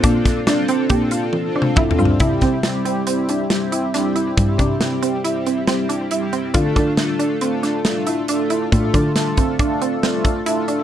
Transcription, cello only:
\new Staff \with { instrumentName = "Cello" } { \clef bass \time 5/4 \key c \mixolydian \tempo 4 = 138 bes,2 bes,2~ bes,8 g,8 | c8 c1 r8 | g,8 c1 r8 | d8 d1 r8 |
a,8 d1 r8 | }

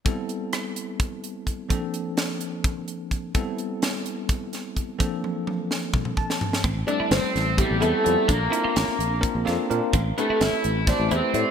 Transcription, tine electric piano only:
\new Staff \with { instrumentName = "Tine electric piano" } { \time 7/8 \key a \phrygian \tempo 4 = 128 << { r2. r8 | r2. r8 | r2. r8 | r2 r8 a''4 |
r2. r8 | r2. r8 | r2. r8 | } \\ { <g b c' e' a'>2.~ <g b c' e' a'>8 | <f bes c' d' a'>2.~ <f bes c' d' a'>8 | <g b c' e' a'>2.~ <g b c' e' a'>8 | <f bes c' d' a'>2.~ <f bes c' d' a'>8 |
r8 <g a c' e' a'>4. <g b c' e' a'>8 <g b c' e' a'>8 <g b c' e' a'>8 | r8 <bes c' d' f' bes'>4. <bes c' d' f' bes'>8 <bes c' d' f' a'>8 <bes c' d' f' bes'>8 | r8 <a c' e' g' b'>4. <a c' e' g' c''>8 <a c' e' g' b'>8 <a c' e' g' d''>8 | } >> }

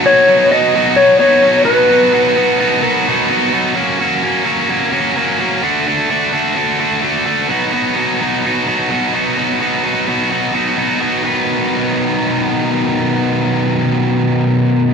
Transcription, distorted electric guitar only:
\new Staff \with { instrumentName = "Distorted electric guitar" } { \time 4/4 \key b \major \tempo 4 = 128 <b, fis b dis' fis'>8 <b, fis b dis' fis'>8 <b, fis b dis' fis'>8 <b, fis b dis' fis'>8 <b, fis b dis' fis'>8 <b, fis b dis' fis'>8 <b, fis b dis' fis'>8 <b, fis b dis' fis'>8 | <b, fis b dis' fis'>8 <b, fis b dis' fis'>8 <b, fis b dis' fis'>8 <b, fis b dis' fis'>8 <b, fis b dis' fis'>8 <b, fis b dis' fis'>8 <b, fis b dis' fis'>8 <b, fis b dis' fis'>8 | <fis ais cis' fis'>8 <fis ais cis' fis'>8 <fis ais cis' fis'>8 <fis ais cis' fis'>8 <fis ais cis' fis'>8 <fis ais cis' fis'>8 <fis ais cis' fis'>8 <fis ais cis' fis'>8 | <d a d' fis'>8 <d a d' fis'>8 <d a d' fis'>8 <d a d' fis'>8 <d a d' fis'>8 <d a d' fis'>8 <d a d' fis'>8 <d a d' fis'>8 |
<b, fis b dis' fis'>8 <b, fis b dis' fis'>8 <b, fis b dis' fis'>8 <b, fis b dis' fis'>8 <b, fis b dis' fis'>8 <b, fis b dis' fis'>8 <b, fis b dis' fis'>8 <b, fis b dis' fis'>8 | <b, fis b dis' fis'>8 <b, fis b dis' fis'>8 <b, fis b dis' fis'>8 <b, fis b dis' fis'>8 <b, fis b dis' fis'>8 <b, fis b dis' fis'>8 <b, fis b dis' fis'>8 <b, fis b dis' fis'>8 | <b, dis fis b dis' b'>1~ | <b, dis fis b dis' b'>1 | }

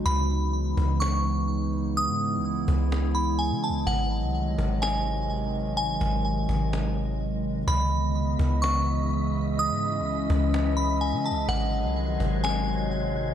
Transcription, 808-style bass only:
\new Staff \with { instrumentName = "808-style bass" } { \clef bass \time 4/4 \key cis \minor \tempo 4 = 126 cis,4. cis,2~ cis,8~ | cis,16 gis,8~ gis,32 cis,8~ cis,32 cis,4.~ cis,16 cis16. cis,16. | gis,,8. bis,,8. gis,,2~ gis,,16 a,,16~ | a,,32 gis,,16. gis,,4 gis,,2~ gis,,8 |
cis,4. cis,2~ cis,8~ | cis,16 gis,8~ gis,32 cis,8~ cis,32 cis,4.~ cis,16 cis16. cis,16. | gis,,8. bis,,8. gis,,2~ gis,,16 a,,16 | }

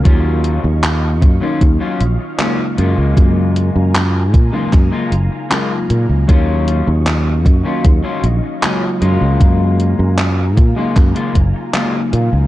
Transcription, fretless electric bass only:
\new Staff \with { instrumentName = "Fretless electric bass" } { \clef bass \time 4/4 \key fis \major \tempo 4 = 77 dis,8. dis,8. fis,16 r16 dis,16 r16 ais,,16 r8. fis,16 cis,16 | fis,8. fis,8. ais,16 r16 fis,16 r16 fis,,16 r8. ais,16 cis,16 | dis,8. dis,8. fis,16 r16 dis,16 r16 ais,,16 r8. fis,16 cis,16 | fis,8. fis,8. ais,16 r16 fis,16 r16 fis,,16 r8. ais,16 cis,16 | }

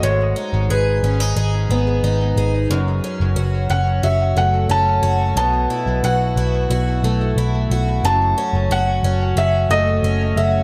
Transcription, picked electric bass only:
\new Staff \with { instrumentName = "Picked electric bass" } { \clef bass \time 4/4 \key fis \dorian \tempo 4 = 90 gis,,8 r16 gis,,16 gis,,8 gis,,8 gis,,8 gis,,8 gis,,8 gis,,8 | fis,,8 r16 fis,,16 fis,,8 fis,,8 fis,,8 fis,,8 fis,,8 fis,,8 | b,,8 r16 b,,16 b,,8 b,,8 b,,8 b,,8 b,,8 b,,8 | fis,,8 r16 fis,,16 fis,,8 fis,,8 fis,,8 fis,,8 fis,,8 fis,,8 | }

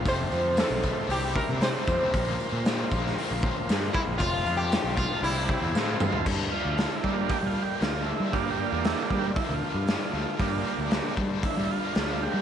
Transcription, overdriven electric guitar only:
\new Staff \with { instrumentName = "Overdriven electric guitar" } { \time 4/4 \key g \dorian \tempo 4 = 116 <f, c f a c'>4. <f, c f a c'>8 <c g c' e'>4. <c g c' e'>8 | <bes, f bes c' f'>4. <bes, f bes c' f'>2~ <bes, f bes c' f'>8 | <f, c f a c' f'>4. <f, c f a c' f'>8 <c g c' e'>4 <f a c' f'>4 | <g, d g bes d'>8 <g bes d'>8 <d g bes d'>8 <g bes d'>8 <g, d g bes d'>4 <d g bes d'>8 <g bes d'>8 |
<g, d g bes d'>8 <g bes d'>8 <d g bes d'>8 <g bes d'>8 <g, d g bes d'>4 <d g bes d'>8 <g bes d'>8 | <g, d g bes d'>8 <g bes d'>8 <d g bes d'>8 <g bes d'>8 <g, d g bes d'>4 <d g bes d'>8 <g bes d'>8 | }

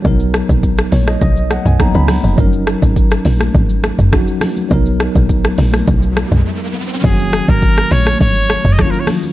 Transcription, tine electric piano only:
\new Staff \with { instrumentName = "Tine electric piano" } { \time 4/4 \key fis \major \tempo 4 = 103 << { r4. cis''16 dis''16 dis''8 fis''16 gis''16 ais''16 b''8. | r1 | r1 | r1 | } \\ { <fis b dis' ais'>2. <fis ais b dis'>4 | <fis cis' dis' ais'>2. <fis cis' dis' fis'>4 | <fis b dis' ais'>1 | <dis fis ais cis' fis'>2. <dis fis ais cis' e' eis'>4 | } >> }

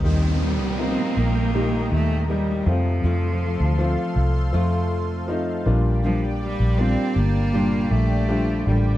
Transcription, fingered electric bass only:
\new Staff \with { instrumentName = "Fingered electric bass" } { \clef bass \time 4/4 \key bes \major \tempo 4 = 80 ees,8. c,8 r16 bes,,4 ees,4 f,8 | f,8. d,8 r16 c,8 f,4. bes,,8~ | bes,,8. bes,,8 r16 g,,4 bes,,4 a,,8 | }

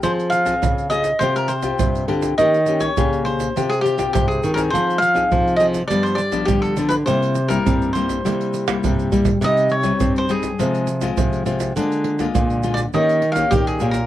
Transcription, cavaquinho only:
\new Staff \with { instrumentName = "Cavaquinho" } { \time 4/4 \key f \minor \tempo 4 = 102 c''8 f''4 ees''8 c''16 bes'16 c''4 r8 | ees''8. des''8. c''8. aes'16 g'8 g'16 aes'8 bes'16 | c''8 f''4 ees''8 d''16 c''16 d''8 g'16 a'8 b'16 | c''8. bes'8. c''2 r8 |
ees''8 des''8. c''16 aes'2 r8 | r4 \tuplet 3/2 { r4 d''8 ees''4 f''8 } g'16 aes'8 bes'16 | }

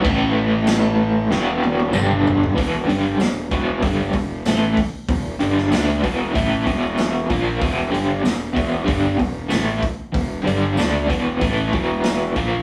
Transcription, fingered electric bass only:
\new Staff \with { instrumentName = "Fingered electric bass" } { \clef bass \time 4/4 \key e \minor \tempo 4 = 95 a,,2 e,,4 g,,4 | e,,8 g,,8 e,,8 e,,8 g,,8 e,,8 a,,8 r8 | e,,8 g,,8 d,8 e,,8 a,,8 e,,4 ais,,8 | e,,8 g,,8 e,,8 e,,8 g,,8 e,,8 a,,8 r8 |
e,,8 g,,8 d,8 e,,8 a,,8 e,,4 ais,,8 | }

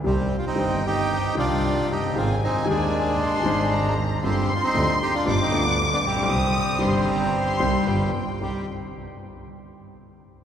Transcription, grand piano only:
\new Staff \with { instrumentName = "Grand piano" } { \clef bass \time 4/4 \key c \minor \tempo 4 = 115 << { <c, c ees g c' g'>8 r8 <g,, g, ees g c' g'>4. <c, c ees g c' g'>4. | <aes,, aes, ees aes c' aes'>8 r8 <ees,, ees, ees aes c' aes'>4. <aes,, aes, ees aes c' aes'>4. | <g,, g, d g c' f'>8 r8 <d, d g c' f'>8 r8 <g,, g, d g b f'>8 <d, d g b f'>4. | <c, c ees g c' g'>8 r8 <g,, g, ees g c' g'>4. <c, c ees g c' g'>8 <g,, g, d g b f'>8 r8 |
<c, g c' ees'>8 r2. r8 | } \\ { r2. r8 r32 f,,32 fis,,32 g,,32 | r1 | r2. r8 r32 a,,32 bes,,32 b,,32 | r1 |
r1 | } >> }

